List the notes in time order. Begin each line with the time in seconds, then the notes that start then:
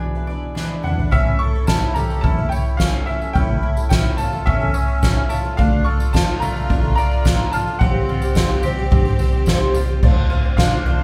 Already playing: E2 E3 G#3 B3 D4 E4 G#4 B4 D5
0.00 B2 D4
0.15 D4 E4 B4
0.27 G#3 D4 E4 D5
0.32 B4
0.55 E3 G#3 B3 D4 E4 B4, snare
0.83 G#3 D4 E4 F#5, mid tom
0.87 B4
0.98 D4 E4 B4, floor tom
1.11 A1 A2 E3 A3 C#4 E4 A4 E5, kick, floor tom, tambourine
1.39 E4 A4 C#6
1.55 A3 C#4 E4 A4
1.67 A2 E3 A3 C#4 E4 A4 A5, kick, snare, tambourine
1.94 A3 C#4 E4 G4 A4 A#5, floor tom, tambourine
1.98 A4
2.10 A3 C#4 E4 A4, tambourine
2.21 E2 C#4 E4 A5, kick, floor tom, tambourine
2.38 A3 C#4 E4 A4
2.49 A3 C#4 E4 C#5 G5, tambourine
2.53 E4 A4
2.66 tambourine
2.77 A2 E3 A3 C#4 E4 F5, kick, snare, tambourine
2.82 A4
3.06 A3 C#4 E4 E5
3.10 E4 A4
3.22 A3 C#4 E4 A4, tambourine
3.33 A1 A2 E3 A3 C#4 E4 A4 G5, kick, floor tom, tambourine
3.63 E4
3.77 A3 C#4 E4 A4, tambourine
3.89 A2 E3 A3 C#4 E4 A4 G5, kick, snare, tambourine
4.04 tambourine
4.17 A3 C#4 E4 F4 A4 A5, floor tom, tambourine
4.21 A4
4.32 A3 C#4 E4 A4, tambourine
4.46 E2 C#4 E5, kick, floor tom, tambourine
4.61 A3 C#4 E4 A4
4.74 A3 C#4 E4 A4 C#5, tambourine
4.88 tambourine
5.02 A2 E3 A3 C#4 E4 A4, kick, snare, tambourine
5.29 A3 C#4 E4 F4 A4 A5, tambourine
5.44 A3 C#4 E4 A4, tambourine
5.57 D2 D3 F3 A3 D4 F4 A4 F5, kick, floor tom, tambourine
5.84 F4 A4 C#6
6.00 D4 F4 A4, tambourine
6.13 D3 A3 D4 F4 A4 A5, kick, snare, tambourine
6.28 tambourine
6.40 A3 D4 F4 A4 A#5, floor tom, tambourine
6.55 D4 F4 A4, tambourine
6.69 A1 D4, kick, floor tom, tambourine
6.83 D4 F4 A4
6.95 A3 D4 F4 D5 A#5, tambourine
7.00 A4
7.11 tambourine
7.25 D3 A3 D4 F4 A4, kick, snare, tambourine
7.51 A3 D4 F4 A4 A5, tambourine
7.67 D4 F4 A4, tambourine
7.79 C2 C3 F3 G3 C4 G4 F#5, kick, floor tom, tambourine
7.83 C4 G4 C5
8.09 F4, floor tom, tambourine
8.22 G3 C4 G4 C5, tambourine
8.35 C3 F3 G3 C4 G4 C5, kick, snare, tambourine
8.50 tambourine
8.63 G3 C4 G4 C5, floor tom, tambourine
8.78 G3 C4 G4 C5
8.91 G2 C4, kick, floor tom, tambourine
9.05 G3 C4 G4 C5, tambourine
9.19 G3 C4 G4 C5, floor tom, tambourine
9.32 tambourine
9.46 C3 F3 G3 C4 G4 C5, kick, snare, tambourine
9.75 G3 C4 F4 G4 C5, floor tom, tambourine
9.88 G3 C4 G4 C5, tambourine
10.03 D2 D3 A3 C4 D4 F4 C5, kick, floor tom, crash
10.30 A3 C4 F4 C5
10.44 C4 F4 C5
10.57 D3 A3 C4 D4 F4 C5 F5, kick, snare
10.86 A3 C4 F4 C5, floor tom